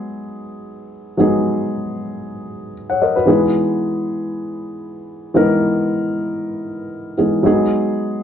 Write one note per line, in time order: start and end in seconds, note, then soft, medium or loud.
0.00 1.14 F#3 medium
0.00 1.14 G#3 medium
0.00 1.15 B3 medium
0.00 1.15 D#4 medium
0.00 1.15 G#4 medium
1.17 3.22 F#3 medium
1.17 3.23 G#3 medium
1.17 3.23 B3 medium
1.17 3.24 D#4 medium
1.17 2.73 G#4 medium
2.90 3.01 C#5 soft
2.90 3.01 F#5 medium
3.02 3.16 A#4 medium
3.02 3.15 D#5 medium
3.16 3.41 F#4 medium
3.16 3.41 B4 medium
3.26 5.31 E3 medium
3.26 5.31 G#3 medium
3.26 5.32 B3 medium
3.26 5.32 D#4 medium
3.26 5.32 G#4 medium
5.34 7.14 E3 medium
5.34 7.14 G#3 medium
5.34 7.14 B3 medium
5.34 7.15 D#4 medium
5.34 7.15 A#4 medium
7.17 7.44 E3 medium
7.17 7.42 G#3 soft
7.17 7.43 B3 soft
7.17 7.44 D#4 soft
7.17 7.44 G#4 medium
7.43 8.23 F#3 medium
7.43 8.23 G#3 medium
7.43 8.23 B3 medium
7.43 8.23 D#4 medium
7.43 8.23 G#4 medium